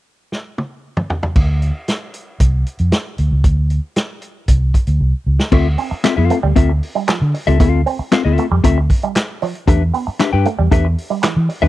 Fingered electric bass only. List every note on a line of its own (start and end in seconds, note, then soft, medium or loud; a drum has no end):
1.36 1.70 D2 medium
2.40 2.63 C2 medium
2.80 2.91 F2 medium
3.19 3.30 D2 medium
3.32 3.43 C#2 medium
3.44 3.78 D2 medium
4.48 4.71 C2 medium
4.88 4.99 D2 medium
5.00 5.12 C2 medium
5.26 5.38 C#2 medium
5.52 5.75 D2 loud
5.92 muted fingered electric bass stroke soft
6.18 6.29 F2 medium
6.44 6.55 D2 medium
6.57 6.79 D2 medium
7.21 7.33 D3 medium
7.48 7.59 C#2 medium
7.60 7.83 D2 loud
7.99 muted fingered electric bass stroke soft
8.25 8.36 D2 medium
8.51 8.62 F2 medium
8.64 8.87 D2 medium
9.68 9.90 E2 loud
10.08 muted fingered electric bass stroke soft
10.33 10.44 G2 medium
10.59 10.70 E2 medium
10.72 10.94 E2 loud
11.37 11.48 E3 medium
11.62 11.68 D#2 medium